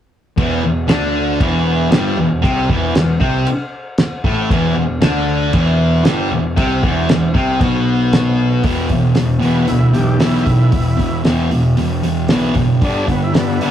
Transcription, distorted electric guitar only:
0.37 0.62 E2 medium
0.37 0.63 E3 loud
0.64 0.85 E2 medium
0.88 1.39 D3 medium
0.88 1.40 D4 loud
1.39 1.89 E2 loud
1.39 1.91 E3 loud
1.90 2.16 G2 loud
1.90 2.17 G3 medium
2.17 2.38 E2 medium
2.42 2.68 C3 loud
2.42 2.69 C4 loud
2.69 2.94 E2 medium
2.69 2.95 E3 loud
2.95 3.16 E2 medium
3.19 3.45 C3 medium
3.19 3.46 C4 loud
4.24 4.50 A2 medium
4.24 4.50 A3 loud
4.50 4.75 E2 medium
4.50 4.76 E3 loud
4.76 4.97 E2 medium
5.01 5.52 D3 medium
5.01 5.53 D4 loud
5.53 6.04 E2 medium
5.53 6.04 E3 loud
6.04 6.30 G2 medium
6.04 6.31 G3 loud
6.32 6.52 E2 medium
6.56 6.82 C3 medium
6.56 6.83 C4 loud
6.82 7.08 E2 medium
6.82 7.08 E3 loud
7.09 7.30 E2 medium
7.34 7.60 C3 medium
7.34 7.61 C4 loud
7.60 8.63 B2 medium
7.60 8.64 B3 loud
8.64 8.89 E2 medium
8.64 8.89 B2 medium
8.64 8.89 E3 loud
8.90 9.14 E2 medium
8.90 9.14 B2 medium
9.15 9.38 E2 medium
9.15 9.39 B2 medium
9.39 9.65 E2 medium
9.39 9.66 B2 loud
9.39 9.66 E3 loud
9.67 9.91 E2 medium
9.67 9.91 B2 medium
9.93 10.17 E2 medium
9.93 10.17 B2 medium
10.19 10.44 E2 medium
10.19 10.45 B2 loud
10.19 10.45 E3 loud
10.46 10.70 E2 medium
10.46 10.70 B2 medium
10.72 10.96 E2 medium
10.72 10.96 B2 medium
10.97 11.21 E2 medium
10.97 11.21 B2 medium
11.24 11.49 E2 medium
11.24 11.49 B2 medium
11.24 11.50 E3 loud
11.51 11.74 E2 medium
11.51 11.75 B2 medium
11.77 12.00 E2 medium
11.77 12.01 B2 medium
12.03 12.27 E2 medium
12.03 12.27 B2 medium
12.29 12.54 E2 medium
12.29 12.54 B2 medium
12.29 12.54 E3 loud
12.55 12.78 E2 medium
12.55 12.79 B2 medium
12.81 13.06 G2 medium
12.81 13.06 D3 medium
12.81 13.07 G3 medium
13.07 13.31 G2 medium
13.07 13.31 D3 medium
13.34 13.57 G2 medium
13.34 13.57 D3 medium
13.61 13.71 G2 medium
13.61 13.71 D3 loud
13.61 13.71 G3 loud

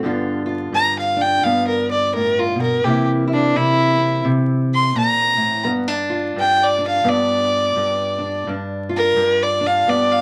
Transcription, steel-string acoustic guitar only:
0.03 0.71 G2 medium
0.03 2.85 D3 medium
0.03 1.44 B3 medium
0.03 1.15 D4 medium
0.03 0.45 F4 medium
0.46 2.82 F4 medium
0.72 1.43 G2 medium
1.17 2.82 D4 medium
1.44 2.82 G2 medium
1.44 2.82 B3 medium
2.15 2.55 A2 medium
2.56 2.84 B2 medium
2.84 3.55 C3 medium
2.84 5.64 E3 medium
2.84 4.26 A#3 medium
2.84 3.97 C4 medium
2.84 3.26 E4 medium
3.28 5.67 E4 medium
3.56 4.24 C3 medium
3.98 5.64 C4 medium
4.25 4.95 C3 medium
4.95 5.37 A#2 medium
5.37 5.66 A2 medium
5.65 6.36 G2 medium
5.65 5.88 B3 medium
5.88 6.77 D4 medium
6.10 8.46 F4 medium
6.36 7.04 G2 medium
6.79 8.18 D4 medium
7.04 7.75 G2 medium
7.04 8.44 B3 medium
7.76 8.44 G2 medium
8.18 8.49 D4 medium
8.47 9.15 G2 medium
8.47 9.60 D4 medium
8.89 10.21 F4 medium
9.16 9.86 G2 medium
9.61 10.21 D4 medium
9.87 10.21 G2 medium
9.87 10.21 B3 medium

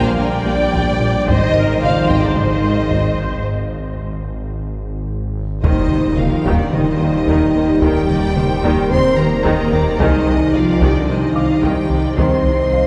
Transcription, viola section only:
0.00 0.19 C5 medium
0.17 0.45 A#4 medium
0.45 1.26 D5 medium
1.27 1.55 C5 medium
1.55 1.81 A#4 medium
1.81 3.42 C5 medium
5.64 5.89 D#3 medium
5.64 9.96 G3 medium
5.92 6.00 D#3 soft
6.19 6.27 D#3 soft
6.46 6.71 D#3 medium
6.74 6.82 D#3 soft
7.02 7.10 D#3 soft
7.29 7.54 D#3 medium
7.57 7.65 D#3 medium
7.82 8.08 D#3 medium
8.10 8.18 D#3 medium
8.37 8.45 D#3 medium
8.64 8.89 D#3 medium
8.91 8.99 D#3 medium
9.19 9.27 D#3 medium
9.45 9.71 D#3 medium
9.73 9.81 D#3 medium
10.00 10.26 D#3 medium
10.27 10.35 C3 medium
10.54 10.62 C3 medium
10.81 11.07 D#3 medium
11.08 11.16 C3 medium
11.35 11.43 C3 soft
11.62 11.88 D#3 medium
11.90 11.98 C3 soft
12.18 12.43 D#3 medium
12.46 12.54 C3 soft
12.72 12.80 C3 soft

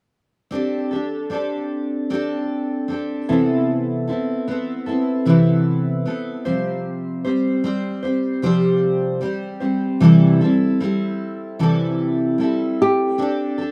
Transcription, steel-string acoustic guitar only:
0.51 0.91 C4 medium
0.51 0.92 D4 medium
0.51 0.91 G4 medium
0.51 0.90 A4 medium
0.91 1.30 D4 soft
0.91 1.30 G4 soft
0.91 1.31 A4 soft
1.30 2.09 C4 medium
1.30 2.09 D4 medium
1.30 2.09 G4 medium
1.30 2.11 A4 medium
2.10 2.87 C4 medium
2.10 2.88 D4 medium
2.10 2.89 G4 medium
2.10 2.90 A4 medium
2.88 3.28 C4 soft
2.88 3.29 D4 soft
2.88 3.28 G4 soft
2.88 3.27 A4 medium
3.29 4.09 C3 soft
3.29 4.09 E3 soft
3.29 4.08 B3 medium
3.29 4.09 C4 medium
3.29 4.07 E4 medium
3.29 4.06 A4 medium
4.07 4.46 B3 soft
4.07 4.47 C4 soft
4.07 4.47 E4 soft
4.07 4.48 A4 soft
4.48 4.87 B3 medium
4.48 4.87 C4 medium
4.48 4.86 E4 medium
4.48 4.85 A4 medium
4.86 5.25 B3 soft
4.86 5.26 C4 soft
4.86 5.25 E4 soft
4.86 5.26 A4 soft
5.25 6.05 C3 medium
5.25 6.06 E3 medium
5.25 6.04 B3 medium
5.25 6.06 C4 medium
5.25 6.06 E4 medium
5.25 6.06 A4 medium
6.06 6.45 B3 soft
6.06 6.45 C4 soft
6.06 6.45 E4 soft
6.06 6.45 A4 medium
6.45 7.25 C3 soft
6.45 7.25 F3 soft
6.45 7.26 G3 soft
6.45 7.26 C4 medium
6.45 7.25 G4 medium
6.45 7.24 C5 medium
7.25 7.62 G3 soft
7.25 7.63 C4 soft
7.25 7.64 G4 soft
7.25 7.64 C5 medium
7.64 8.04 G3 medium
7.64 8.04 C4 medium
7.64 8.03 G4 medium
7.64 8.01 C5 medium
8.03 8.42 G3 soft
8.03 8.43 C4 soft
8.03 8.42 G4 soft
8.03 8.43 C5 soft
8.42 9.22 C3 medium
8.42 9.23 F3 medium
8.42 9.20 G3 medium
8.42 9.21 C4 medium
8.42 9.22 G4 medium
8.42 9.22 C5 medium
9.21 9.61 G3 medium
9.21 9.61 C4 medium
9.21 9.60 G4 medium
9.21 9.59 C5 medium
9.60 10.00 G3 soft
9.60 10.00 C4 soft
9.60 10.01 G4 soft
9.60 10.01 C5 soft
10.00 10.41 C3 medium
10.00 10.41 E3 medium
10.00 10.41 G3 medium
10.00 10.41 C4 medium
10.00 10.40 E4 medium
10.00 10.39 A4 medium
10.41 10.79 G3 soft
10.41 10.79 C4 soft
10.41 10.80 E4 soft
10.41 10.80 A4 soft
10.80 11.60 G3 medium
10.80 11.59 C4 medium
10.80 11.59 E4 medium
10.80 11.60 A4 medium
11.59 12.39 C3 medium
11.59 12.39 E3 medium
11.59 12.38 G3 medium
11.59 12.39 C4 medium
11.59 12.39 E4 medium
11.59 12.40 A4 medium
12.38 13.18 G3 medium
12.38 13.17 C4 medium
12.38 13.18 E4 medium
12.38 13.19 A4 medium
13.18 13.57 C4 medium
13.18 13.58 D4 medium
13.18 13.57 G4 medium
13.18 13.57 A4 medium
13.58 13.71 D4 soft
13.58 13.71 G4 soft
13.58 13.71 A4 soft

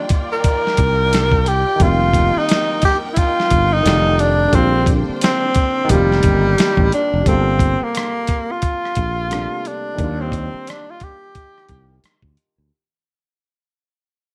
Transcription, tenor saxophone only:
0.33 1.50 A#4 loud
1.48 1.84 G4 medium
1.82 2.40 F4 loud
2.38 2.84 D#4 medium
2.85 2.97 G4 medium
3.14 3.20 E4 medium
3.19 3.75 F4 medium
3.73 4.22 D#4 loud
4.20 4.57 D4 medium
4.55 4.97 C4 loud
5.23 5.92 C4 medium
5.91 6.92 G3 medium
6.94 7.29 D4 medium
7.28 7.85 C4 medium
7.83 8.53 A#3 medium
8.52 9.69 F4 medium
9.67 10.23 D4 medium
10.22 10.71 C4 medium
10.70 10.92 D4 medium
10.91 11.06 F4 medium
11.04 12.05 G4 medium

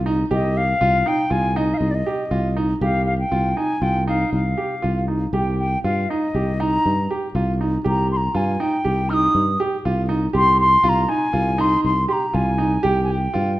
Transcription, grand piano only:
0.06 0.21 D#4 medium
0.31 0.61 G4 medium
0.81 0.96 F4 medium
1.06 1.21 D#4 medium
1.30 1.45 F4 medium
1.56 1.86 D#4 medium
2.06 2.21 G4 medium
2.31 2.46 F4 medium
2.57 2.71 D#4 medium
2.82 3.12 G4 medium
3.32 3.47 F4 medium
3.57 3.72 D#4 medium
3.82 3.97 F4 medium
4.08 4.38 D#4 medium
4.57 4.73 G4 medium
4.82 4.98 F4 medium
5.08 5.23 D#4 medium
5.33 5.64 G4 medium
5.84 5.99 F4 medium
6.10 6.25 D#4 medium
6.35 6.50 G4 medium
6.60 6.90 D#4 medium
7.11 7.25 G4 medium
7.35 7.50 F4 medium
7.61 7.76 D#4 medium
7.84 8.15 G4 medium
8.35 8.50 F4 medium
8.60 8.75 D#4 medium
8.85 9.00 G4 medium
9.10 9.40 D#4 medium
9.60 9.75 G4 medium
9.85 10.00 F4 medium
10.09 10.24 D#4 medium
10.33 10.64 G4 medium
10.83 10.99 F4 medium
11.08 11.24 D#4 medium
11.33 11.48 F4 medium
11.58 11.89 D#4 medium
12.08 12.24 G4 medium
12.33 12.49 F4 medium
12.58 12.74 D#4 medium
12.83 13.14 G4 medium
13.34 13.49 F4 medium

